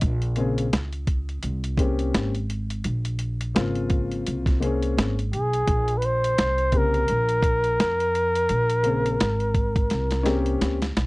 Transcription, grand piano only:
0.36 C#3 A#3 C4 G#4
1.77 A#3 C4 C#4 G4
3.55 C#3 A#3 C4 F4
4.60 C3 A#3 C4 G#4
4.66 C#4
6.72 C#3 A#3 C4 G4
8.83 C#3 A#3 C4 G#4
10.23 A#3 C4 C#4 G4

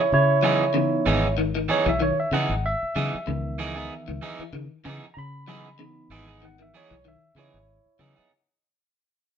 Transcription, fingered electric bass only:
0.12 C#3
1.06 G#1
1.86 B1
2.31 C#3
2.49 G#1
2.83 muted fingered electric bass stroke
2.96 C#3
3.14 muted fingered electric bass stroke
3.28 C#2
4.08 C#2
4.39 muted fingered electric bass stroke
4.53 C#3
4.85 C#3
5.17 C#3
6.10 G#1
6.91 B1
7.35 C#3
7.54 G#1
7.86 muted fingered electric bass stroke
7.99 C#3
8.18 muted fingered electric bass stroke

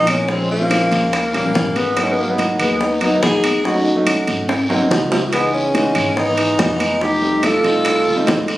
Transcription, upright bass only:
Already playing: A#1
0.92 D#2
1.34 A#1
1.55 G#1
2.59 D#2
3.23 D#2
4.28 G#1
4.70 C2
4.91 C#2
5.96 G#1
6.59 F1
7.64 C2
8.06 D2
8.27 E2

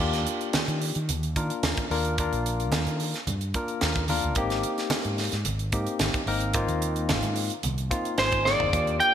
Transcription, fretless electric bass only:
0.00 D#2
0.68 D#3
0.96 D#3
1.09 D#2
1.36 D#3
1.63 D#2
1.90 D#2
2.32 A#1
2.72 D#2
2.87 D#3
3.27 G2
3.82 D#2
4.24 D2
4.36 G#1
5.05 G#2
5.33 G#2
5.45 G#1
5.73 G#2
5.99 G#1
6.14 muted fretless electric bass stroke
6.26 G#1
6.68 D#2
7.09 G#1
7.23 G#2
7.64 C2
8.18 G#1
8.60 G1
8.73 D#2

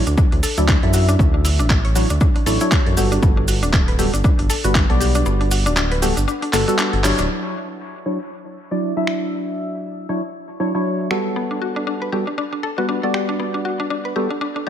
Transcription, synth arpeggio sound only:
0.07 D4
0.18 D4
0.32 D4
0.43 A4
0.58 E4
0.68 D4
0.83 A4
0.94 F#4
1.09 D4
1.19 C#4
1.34 D4
1.45 E4
1.59 D4
1.70 D4
1.85 C#5
1.96 F#4
2.10 D4
2.21 D4
2.36 D4
2.46 A4
2.61 E4
2.72 D4
2.86 A4
2.97 G4
3.12 D4
3.23 B3
3.37 D4
3.48 F#4
3.63 D4
3.73 D4
3.88 B4
3.99 G4
4.14 D4
4.24 D4
4.39 D4
4.50 A4
4.64 F#4
4.75 D4
4.90 A4
5.00 G4
5.15 D4
5.26 B3
5.41 D4
5.51 F#4
5.66 D4
5.77 D4
5.92 B4
6.02 G4
6.17 D4
6.28 D4
6.42 D4
6.53 A4
6.68 F#4
6.79 D4
6.93 A4
7.04 G4
7.19 D4
11.36 B3
11.51 D4
11.62 F#4
11.76 D4
11.87 D4
12.02 B4
12.12 G4
12.27 D4
12.38 D4
12.53 D4
12.63 A4
12.78 F#4
12.89 D4
13.03 A4
13.14 G4
13.29 D4
13.40 B3
13.54 D4
13.65 F#4
13.80 D4
13.90 D4
14.05 B4
14.16 G4
14.30 D4
14.41 D4
14.56 D4

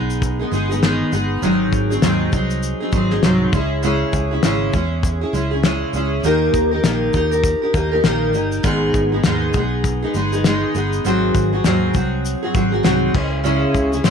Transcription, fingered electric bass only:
Already playing: B1
0.52 G1
1.12 G1
1.42 G#1
1.72 G#1
2.02 D#2
2.33 C2
2.92 G#1
3.23 C2
3.53 C#2
4.13 C#2
4.43 G#1
4.73 E2
5.33 C#2
5.93 C#2
6.23 D#2
6.54 D#2
6.83 A#1
7.14 D#2
7.74 D#2
8.03 A#1
8.34 G1
8.64 G#1
8.94 G#1
9.24 D#2
9.54 B1
10.14 G1
10.75 G1
11.05 G#1
11.35 G#1
11.64 D#2
11.95 C2
12.55 G#1
12.84 C2
13.15 C#2
13.74 C#2
14.04 G#1

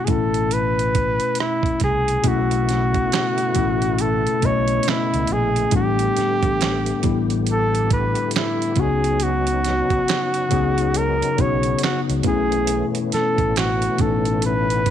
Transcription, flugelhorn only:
0.05 G#4
0.10 A4
0.53 B4
1.41 E4
1.84 G#4
2.28 F#4
4.02 A4
4.46 C#5
4.89 E4
5.33 G#4
5.76 G4
7.50 A4
7.93 B4
8.37 E4
8.80 G#4
9.23 F#4
10.97 A#4
11.41 C#5
11.84 F#4
12.28 G#4
13.14 A4
13.58 F#4
14.02 A4
14.46 B4

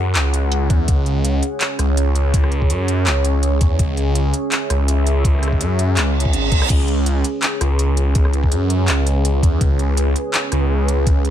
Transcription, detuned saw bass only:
Already playing: F#2
0.15 C#2
0.70 E2
0.88 C#2
1.79 C#2
2.70 F#2
3.06 C#2
3.61 E2
3.79 C#2
4.70 C#2
5.61 F#2
5.97 C#2
6.34 G#1
6.52 B1
6.70 C#2
7.61 C#2
8.52 F#2
8.89 C#2
9.43 E2
9.61 C#2
10.52 C#2

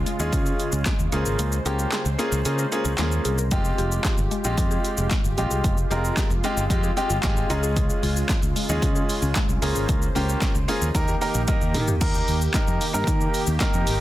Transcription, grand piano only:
0.20 G#3 C#4 F4 G#4
1.12 A#3 C#4 F4 G#4
1.65 A#3 C#4 F4 G4
2.19 A#3 C#4 F4 G#4
2.45 A#3 C#4 F4 G#4
2.72 A#3 C#4 F4 G#4
2.99 A#3 C#4 F4 G#4
3.52 G#3 C4 F4 G4
4.44 G#3 C4 F4 G4
5.38 G#3 C4 F4 G4
5.91 G#3 C4 F4 A#4
6.44 G#3 C4 F4 G4
6.70 G#3 C4 F4 G4
6.97 G#3 C4 F4 G4 F5
7.23 G#3 C4 F4 G4 G#5
7.50 G#3 C#4 F4 G#4 A#5
8.69 G#3 C#4 F4 G#4
9.62 A#3 C#4 F4 G#4
10.15 A#3 C#4 F4 G4
10.68 A#3 C#4 F4 G#4
10.95 A#3 D#4 G4 A#4
11.21 A#3 D#4 G4 A#4 A#5
11.47 A#3 D#4 G4 A#4 D#5
12.01 A#3 D#4 G4 A#4
12.54 A#3 D#4 G4 A#4
12.93 A#3 D#4 G4 A#4
13.60 A#3 D#4 G4 A#4

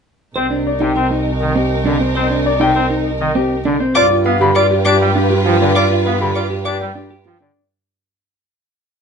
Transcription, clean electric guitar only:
0.36 C5
0.50 D4
0.80 D#4
0.96 A#4
1.11 D#4
1.56 C4
1.85 D4
2.00 C4
2.15 C5
2.30 D4
2.60 D#4
2.75 A#4
2.90 D#4
3.35 C4
3.65 D4
3.80 C4
3.95 F5
4.11 F4
4.25 B4
4.41 G4
4.56 D5
4.71 G4
4.86 D5
5.15 D4
5.30 G4
5.45 F4
5.60 D4
5.75 F5
5.91 F4
6.06 B4
6.21 G4
6.35 D5
6.50 G4
6.65 D5
6.95 D4
7.10 G4
7.26 F4
7.40 D4

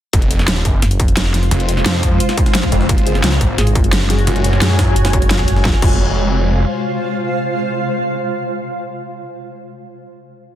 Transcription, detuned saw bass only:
0.13 F1
0.48 D#1
0.65 F#1
1.51 F1
1.86 F2
2.72 F1
2.89 F#1
3.24 C#2
3.41 G#1
4.27 F#1
4.62 F#2
5.65 F1
5.82 F1

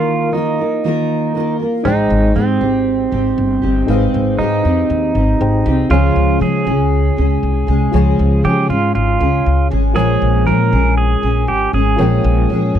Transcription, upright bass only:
1.85 G#1
2.10 G#1
2.36 G#2
2.61 G#1
3.12 G#1
3.38 G1
3.63 G1
3.88 G#1
4.14 G#1
4.39 G#2
4.65 F2
4.90 D#2
5.15 G#1
5.41 G#1
5.66 C2
5.90 C#2
6.16 C#2
6.41 C#3
6.67 C#2
7.18 C#2
7.43 C2
7.68 C2
7.94 C#2
8.19 C#2
8.45 C#3
8.70 G#2
8.95 G#1
9.20 C#2
9.46 C#2
9.71 G#1
9.96 A#1
10.22 A#1
10.47 A#2
10.73 A#1
11.23 A#1
11.48 G#1
11.73 G#1
11.99 A#1
12.24 A#1
12.50 A#2
12.75 G2

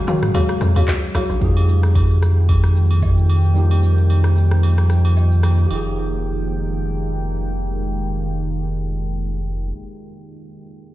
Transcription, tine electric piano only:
1.40 A#3 D#4 F4 G4
1.44 G#4
3.54 G3 A#3 D#4 F4
3.58 G4
5.66 A#3 G4
5.71 D#4 F4
5.75 G#4

